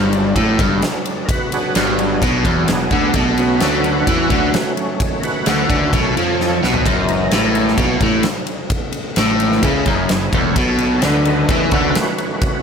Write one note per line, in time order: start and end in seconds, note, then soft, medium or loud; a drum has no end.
0.00 0.33 G1 medium
0.00 0.35 G2 loud
0.12 1.05 F#3 medium
0.12 1.05 G#3 medium
0.12 1.05 D4 medium
0.12 ride medium
0.36 0.57 A1 medium
0.36 0.58 A2 loud
0.36 kick medium
0.36 ride medium
0.59 0.81 G1 medium
0.59 0.82 G2 loud
0.59 kick loud
0.59 ride medium
0.82 snare loud
0.82 ride medium
1.05 1.27 F#3 soft
1.05 1.27 G#3 soft
1.05 1.27 D4 medium
1.05 ride medium
1.25 1.28 A#4 medium
1.25 kick loud
1.25 ride loud
1.30 1.51 F#4 medium
1.30 1.52 B4 medium
1.52 2.68 F#3 medium
1.52 1.98 D4 medium
1.52 1.74 F#4 medium
1.52 3.11 G#4 soft
1.52 1.75 B4 medium
1.52 ride medium
1.75 2.19 G1 medium
1.75 2.21 G2 loud
1.75 1.97 F#4 medium
1.75 1.98 B4 medium
1.75 snare loud
1.75 ride medium
1.99 2.20 D4 medium
1.99 2.21 F#4 medium
1.99 ride medium
2.22 2.43 B1 medium
2.22 2.45 B2 medium
2.22 2.43 D4 medium
2.22 2.44 F#4 medium
2.22 kick loud
2.22 ride medium
2.45 2.66 E1 medium
2.45 2.68 E2 loud
2.45 2.67 D4 medium
2.45 2.68 F#4 medium
2.45 kick medium
2.45 ride medium
2.68 2.90 E1 medium
2.68 2.87 E2 medium
2.68 2.90 F#3 soft
2.68 2.90 G#3 soft
2.68 2.90 B3 medium
2.68 2.90 D4 medium
2.68 snare loud
2.68 ride medium
2.91 3.13 D2 medium
2.91 3.14 D3 loud
2.91 3.14 B3 medium
2.91 3.15 D4 medium
2.91 kick medium
2.91 ride medium
3.14 3.58 B1 medium
3.14 3.61 B2 loud
3.14 3.37 A3 medium
3.14 3.38 D4 medium
3.14 kick loud
3.14 ride medium
3.38 5.20 F#3 medium
3.38 5.00 A3 soft
3.38 5.01 C#4 medium
3.38 4.74 F#4 medium
3.38 4.74 B4 medium
3.38 ride medium
3.60 4.04 D2 loud
3.60 4.07 D3 loud
3.60 snare loud
3.60 ride medium
3.84 ride medium
4.07 4.29 E2 medium
4.07 4.30 E3 loud
4.07 kick loud
4.07 ride medium
4.30 4.52 D2 medium
4.30 4.53 D3 loud
4.30 kick loud
4.30 ride medium
4.54 snare loud
4.54 ride medium
4.77 ride medium
5.00 5.90 D#3 medium
5.00 5.92 A3 medium
5.00 5.91 C#4 medium
5.00 kick loud
5.00 ride medium
5.20 5.45 F#4 medium
5.20 5.23 A#4 medium
5.20 ride medium
5.24 5.46 B4 medium
5.46 5.68 D2 medium
5.46 5.68 D3 loud
5.46 5.69 F#4 medium
5.46 5.70 B4 medium
5.46 snare loud
5.46 ride loud
5.69 5.91 D2 loud
5.69 5.92 D3 loud
5.69 5.92 F#4 medium
5.69 5.93 B4 medium
5.69 kick loud
5.69 ride medium
5.92 6.14 B1 medium
5.92 6.16 B2 loud
5.92 6.13 D#3 soft
5.92 6.14 A3 soft
5.92 6.14 C#4 medium
5.92 6.15 A4 medium
5.92 6.16 C#5 medium
5.92 kick loud
5.92 ride medium
6.17 6.60 F2 medium
6.17 6.62 F3 loud
6.17 6.38 A4 medium
6.17 6.39 C#5 medium
6.17 ride medium
6.40 6.61 A4 medium
6.40 6.63 C#5 medium
6.40 snare medium
6.63 6.85 B1 loud
6.63 6.85 B2 loud
6.63 6.84 B4 medium
6.63 6.85 D#5 medium
6.63 snare medium
6.74 floor tom medium
6.86 7.29 F#1 medium
6.86 7.32 F#2 loud
6.86 7.07 A#4 medium
6.86 7.08 D#5 medium
6.86 kick loud
6.86 ride medium
7.07 7.74 E3 medium
7.07 7.75 G#3 soft
7.07 7.75 A#4 medium
7.07 7.32 D#5 medium
7.07 ride medium
7.31 7.75 A1 loud
7.31 7.78 A2 loud
7.31 8.21 C#5 medium
7.31 snare loud
7.31 ride medium
7.55 ride medium
7.68 snare soft
7.78 8.00 B1 medium
7.78 8.01 B2 loud
7.78 7.99 E3 soft
7.78 7.99 G#3 soft
7.78 8.00 A#3 soft
7.78 kick loud
7.78 ride medium
8.01 8.23 A1 medium
8.01 8.24 A2 loud
8.01 kick loud
8.01 ride medium
8.23 snare loud
8.23 ride medium
8.47 ride medium
8.70 kick loud
8.70 ride medium
8.92 ride medium
9.16 9.60 A1 medium
9.16 9.63 A2 medium
9.16 snare loud
9.16 ride medium
9.40 9.71 E3 medium
9.40 9.71 G#3 medium
9.40 9.72 A#3 medium
9.40 ride medium
9.52 snare soft
9.61 9.85 C#2 medium
9.61 9.86 C#3 loud
9.61 9.85 E4 medium
9.61 9.64 G4 medium
9.61 9.85 G#4 medium
9.61 kick loud
9.61 ride loud
9.86 10.08 F#1 medium
9.86 10.10 F#2 loud
9.86 10.08 E4 medium
9.86 10.09 G#4 medium
9.86 kick loud
9.86 ride medium
10.09 10.32 F#1 medium
10.09 10.29 F#2 medium
10.09 10.32 E4 medium
10.09 10.33 G#4 medium
10.09 snare loud
10.09 ride medium
10.33 10.55 E1 loud
10.33 10.56 E2 loud
10.33 10.55 A4 medium
10.33 10.56 C#5 medium
10.33 kick loud
10.33 ride medium
10.56 10.99 B1 loud
10.56 11.04 B2 loud
10.56 10.78 A4 medium
10.56 10.79 C#5 loud
10.56 kick loud
10.56 ride medium
10.79 11.01 A4 medium
10.79 11.03 C#5 medium
10.79 ride medium
11.02 11.46 D2 medium
11.02 11.49 D3 loud
11.02 11.25 B4 medium
11.02 11.26 D#5 medium
11.02 snare loud
11.02 ride medium
11.25 12.17 D#3 medium
11.25 12.17 A3 medium
11.25 12.17 C#4 medium
11.25 11.48 B4 medium
11.25 11.49 D#5 medium
11.25 ride medium
11.49 11.71 E2 medium
11.49 11.72 E3 loud
11.49 11.71 B4 medium
11.49 11.73 D#5 medium
11.49 kick loud
11.49 ride medium
11.71 11.94 D2 medium
11.71 11.95 D3 loud
11.71 12.61 F#4 medium
11.71 12.62 B4 loud
11.71 kick loud
11.71 ride medium
11.95 snare loud
11.95 ride medium
12.18 12.39 D#3 medium
12.18 12.39 A3 soft
12.18 12.39 C#4 medium
12.18 ride medium
12.42 12.62 D#3 medium
12.42 12.62 A3 medium
12.42 12.62 C#4 medium
12.42 kick loud
12.42 ride medium